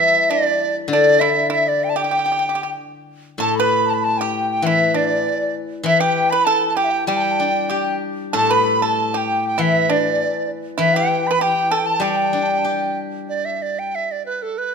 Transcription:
Already playing: guzheng E3 G3, pipa E4, dizi E5, xiao E5
0.30 pipa D4, dizi D5, xiao D5
0.88 guzheng D3, xiao D5, dizi D5
0.93 pipa D4
1.20 pipa E4, dizi E5, xiao E5
1.50 pipa E4, dizi E5, xiao E5
1.67 xiao D5, dizi D5
1.84 dizi G5
1.90 dizi A5
1.96 pipa G4, dizi G5, xiao G5
2.04 pipa G4
2.11 pipa G4
2.19 pipa G4
2.26 pipa G4
2.32 pipa G4
2.39 pipa G4
2.49 pipa G4
2.55 pipa G4
2.63 pipa G4
3.38 guzheng A2, pipa A4, xiao A5, dizi A5
3.55 xiao B5, dizi B5
3.60 pipa B4
3.83 xiao A5 B5
3.90 dizi A5
3.94 dizi B5
4.00 xiao A5, dizi A5
4.17 pipa G4, xiao G5, dizi G5
4.51 dizi G5
4.62 guzheng E3, xiao E5, dizi E5
4.66 pipa E4
4.94 pipa D4, xiao D5, dizi D5
5.41 xiao D5
5.83 guzheng E3, pipa E4, xiao E5, dizi E5
6.00 pipa G4, dizi G5, xiao G5
6.30 pipa B4, dizi B5, xiao B5
6.45 pipa A4, dizi A5, xiao A5
6.69 dizi A5
6.76 pipa G4, dizi G5, xiao G5
6.84 xiao E5
6.91 xiao G5
7.07 guzheng G3, pipa G4, dizi G5, xiao G5
7.17 xiao A5
7.23 xiao G5
7.31 xiao A5
7.40 guzheng D4, xiao G5
7.69 pipa G4, guzheng G4, xiao G5
8.33 guzheng A2, pipa A4, xiao A5, dizi A5
8.50 pipa B4, xiao B5, dizi B5
8.82 pipa A4, xiao A5, dizi A5
9.13 pipa G4, xiao G5
9.17 dizi G5
9.44 xiao G5, dizi G5
9.58 guzheng E3, pipa E4, xiao E5
9.62 dizi E5
9.89 pipa D4, xiao D5, dizi D5
10.78 guzheng E3, pipa E4, dizi E5, xiao E5
10.95 pipa G4, xiao G5, dizi G5
11.27 pipa B4, dizi B5
11.32 xiao B5, dizi B5
11.38 pipa G4, xiao G5
11.42 dizi G5
11.71 pipa A4, xiao A5, dizi A5
11.77 dizi G5
11.83 xiao A5, dizi A5
12.00 guzheng G3, pipa G4, xiao G5
12.04 dizi G5
12.10 xiao A5
12.16 xiao G5
12.25 xiao A5
12.33 guzheng D4, xiao G5
12.43 xiao A5
12.50 xiao G5
12.59 xiao A5
12.65 guzheng G4, xiao G5
13.29 dizi D5
13.45 dizi E5
13.62 dizi D5
13.79 dizi G5
13.95 dizi E5
14.12 dizi D5
14.26 dizi B4
14.42 dizi A4
14.58 dizi B4

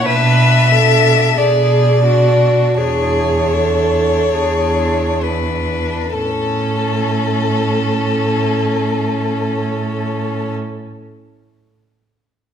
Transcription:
0.06 cello B2, violin D4 E5, viola B4
0.71 violin D4, viola A4
1.37 cello B2, violin D4 D5, viola G#4
2.04 violin D4, viola F#4
2.77 cello E2, violin D4 C#5, viola G#4
3.53 violin D4, viola A4
4.33 cello E2, violin D4, viola G#4
5.22 violin D4 B4
6.12 cello A2, viola C#4, violin A4

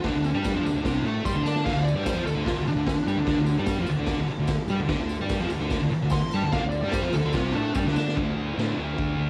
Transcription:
0.03 fingered electric bass D2, distorted electric guitar D3 D4, lead electric guitar D4, kick, snare, open hi-hat, tambourine
0.14 fingered electric bass D2, distorted electric guitar D3
0.24 lead electric guitar D4, tambourine
0.34 fingered electric bass G2, distorted electric guitar G3 G4
0.44 kick, snare, open hi-hat, tambourine
0.54 fingered electric bass F2, distorted electric guitar F3 F4
0.64 fingered electric bass D2, distorted electric guitar D3, tambourine
0.74 fingered electric bass D2, distorted electric guitar D3
0.78 distorted electric guitar D4
0.85 fingered electric bass C2, distorted electric guitar C3 C4, kick, snare, open hi-hat, tambourine
1.02 fingered electric bass A2, distorted electric guitar A3, tambourine
1.07 distorted electric guitar A4
1.25 fingered electric bass G2, distorted electric guitar G3 G4, lead electric guitar C6, kick, snare, tambourine
1.33 fingered electric bass D2, distorted electric guitar D3 D4
1.42 fingered electric bass D3, lead electric guitar A5, snare, tambourine
1.47 distorted electric guitar D4 D5
1.55 snare
1.64 fingered electric bass D2, distorted electric guitar D3 D4, lead electric guitar F5, kick, snare, open hi-hat, tambourine, crash
1.73 fingered electric bass D2, distorted electric guitar D3
1.84 lead electric guitar D5, tambourine
1.94 fingered electric bass G2, distorted electric guitar G3 G4
2.03 lead electric guitar C5, kick, snare, open hi-hat, tambourine
2.14 fingered electric bass F2, distorted electric guitar F3 F4
2.24 fingered electric bass D2, distorted electric guitar D3, lead electric guitar A4, tambourine
2.35 fingered electric bass D2, distorted electric guitar D3 D4
2.44 lead electric guitar F4, kick, snare, open hi-hat
2.48 tambourine
2.56 fingered electric bass D2, distorted electric guitar D3
2.65 lead electric guitar D4, muted fingered electric bass stroke, muted distorted electric guitar stroke, tambourine
2.75 fingered electric bass D2, distorted electric guitar D3
2.87 lead electric guitar D4, kick, snare, open hi-hat, tambourine
3.06 fingered electric bass G2, distorted electric guitar G3 G4, tambourine
3.16 fingered electric bass D2, distorted electric guitar D3
3.27 fingered electric bass D2, distorted electric guitar D3 D4, kick, snare, open hi-hat, tambourine
3.37 fingered electric bass D2, distorted electric guitar D3
3.46 tambourine
3.58 fingered electric bass G2, distorted electric guitar G3 G4
3.66 kick, snare, open hi-hat, tambourine
3.78 fingered electric bass F2, distorted electric guitar F3 F4
3.87 fingered electric bass D2, distorted electric guitar D3, tambourine
3.99 fingered electric bass D2, distorted electric guitar D3 D4
4.06 kick, snare, open hi-hat, tambourine
4.17 fingered electric bass D2, distorted electric guitar D3
4.28 muted fingered electric bass stroke, muted distorted electric guitar stroke, tambourine
4.38 fingered electric bass D2, distorted electric guitar D3
4.48 kick, snare, open hi-hat, tambourine
4.67 fingered electric bass G2, distorted electric guitar G3 G4, tambourine
4.78 fingered electric bass D2, distorted electric guitar D3
4.88 fingered electric bass D2, distorted electric guitar D3 D4, kick, snare, open hi-hat, tambourine
4.99 fingered electric bass D2, distorted electric guitar D3
5.09 tambourine
5.19 fingered electric bass G2, distorted electric guitar G3 G4
5.29 kick, snare, open hi-hat, tambourine
5.40 fingered electric bass F2, distorted electric guitar F3 F4
5.50 fingered electric bass D2, distorted electric guitar D3, tambourine
5.60 fingered electric bass D2, distorted electric guitar D3 D4
5.70 kick, snare, open hi-hat, tambourine
5.81 fingered electric bass D2, distorted electric guitar D3
5.90 muted distorted electric guitar stroke, muted fingered electric bass stroke, tambourine
6.02 fingered electric bass D2, distorted electric guitar D3
6.10 lead electric guitar C6, kick, snare, open hi-hat, tambourine
6.31 fingered electric bass G2, distorted electric guitar G3, lead electric guitar A5, tambourine
6.35 distorted electric guitar G4
6.42 fingered electric bass D2, distorted electric guitar D3
6.52 fingered electric bass D2, distorted electric guitar D3 D4, lead electric guitar F5, kick, snare, open hi-hat, tambourine
6.62 fingered electric bass D2, distorted electric guitar D3
6.69 lead electric guitar D5, tambourine
6.82 fingered electric bass G2, distorted electric guitar G3 G4
6.89 lead electric guitar C5, kick, snare, open hi-hat
6.94 tambourine
7.02 fingered electric bass F2, distorted electric guitar F3 F4
7.13 fingered electric bass D2, distorted electric guitar D3, lead electric guitar A4, tambourine
7.24 fingered electric bass D2, distorted electric guitar D3 D4
7.33 fingered electric bass C2, distorted electric guitar C3, lead electric guitar F4, kick, snare, open hi-hat, tambourine
7.37 distorted electric guitar C4
7.52 fingered electric bass A2, distorted electric guitar A3 A4, lead electric guitar D4, tambourine
7.74 fingered electric bass G2, distorted electric guitar G3 G4, lead electric guitar D4, kick, snare, tambourine
7.84 fingered electric bass D2, distorted electric guitar D3, snare
7.88 distorted electric guitar D4
7.95 fingered electric bass D3, distorted electric guitar D4 D5, snare, tambourine
8.08 snare
8.16 fingered electric bass D2, distorted electric guitar D3 A3 D4, kick, crash
8.35 fingered electric bass D2
8.57 fingered electric bass A2, distorted electric guitar D3 A3 D4, snare, crash
8.77 fingered electric bass D2, distorted electric guitar A3 D4
8.98 fingered electric bass D2, kick, crash
9.18 fingered electric bass D2

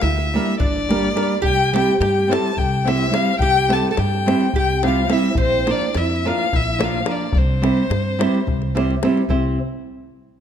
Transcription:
0.02 upright bass D2, oud E4, violin E5, davul high
0.18 davul high
0.34 nylon-string guitar G3 A#3 D4 G4 A#4
0.46 davul high
0.59 upright bass G1, oud D4, violin D5, davul low
0.76 davul high
0.89 nylon-string guitar G3 A#3 D4 G4 A#4, davul high
1.03 davul high
1.15 nylon-string guitar G3 A#3 D4 G4 A#4, davul high
1.32 davul high
1.42 upright bass C2, oud G4, violin G5, davul low
1.60 davul high
1.73 nylon-string guitar G3 C4 E4 G4 C5, oud G4, violin G5, davul high
1.89 davul high
2.00 upright bass G2, oud G4, violin G5, davul high
2.18 davul high
2.28 nylon-string guitar G3 C4 E4 G4 C5, oud A4, violin A5
2.33 davul high
2.46 davul high
2.57 upright bass C2, oud G4, violin G5, davul low
2.85 nylon-string guitar G3 C4 E4 G4 C5, oud E4, violin E5, davul high
3.03 davul high
3.10 nylon-string guitar G3 C4 E4 G4 C5, violin F5, davul high
3.15 oud F4
3.28 davul high
3.39 upright bass C2, oud G4, violin G5, davul low
3.56 davul high
3.68 nylon-string guitar G3 C4 E4 G4 C5, davul high
3.73 oud A4, violin A5
3.83 davul high
3.91 oud A4, violin A5
3.97 upright bass G2, oud G4, violin G5, davul high
4.14 davul high
4.26 nylon-string guitar G3 C4 E4 G4 C5, davul high
4.41 davul high
4.54 upright bass C2, oud G4, davul low
4.58 violin G5
4.83 nylon-string guitar G3 C4 E4 G4 C5, violin F5, davul high
4.88 oud F4
4.96 davul high
5.09 nylon-string guitar G3 C4 E4 G4 C5, oud E4, davul high
5.13 violin E5
5.23 davul high
5.35 upright bass A#1, oud C4, davul low
5.40 violin C5
5.53 davul high
5.66 nylon-string guitar F3 A#3 D4 F4 A#4, oud D4, davul high
5.71 violin D5
5.81 davul high
5.95 upright bass F2, oud E4, violin E5, davul high
6.10 davul high
6.25 nylon-string guitar F3 A#3 D4 F4 A#4, oud F4, violin F5
6.39 davul high
6.53 upright bass A#1, oud E4, violin E5, davul low
6.79 nylon-string guitar F3 A#3 D4 F4 A#4, davul high
6.84 oud F4, violin F5
6.94 davul high
7.06 nylon-string guitar F3 A#3 D4 F4 A#4, davul high
7.11 oud D4, violin D5
7.21 davul high
7.33 upright bass C2, davul low
7.37 oud C4, violin C5
7.62 nylon-string guitar G3 C4 E4 G4 C5, davul high
7.77 davul high
7.90 upright bass G2, davul high
8.19 nylon-string guitar G3 C4 E4 G4 C5, davul high
8.35 davul high
8.47 upright bass C2, davul low
8.62 davul high
8.75 nylon-string guitar G3 C4 E4 G4 C5, davul high
8.91 davul high
9.03 nylon-string guitar G3 C4 E4 G4 C5, davul high
9.17 davul high
9.29 upright bass C2, nylon-string guitar C4 E4 G4 C5, davul low

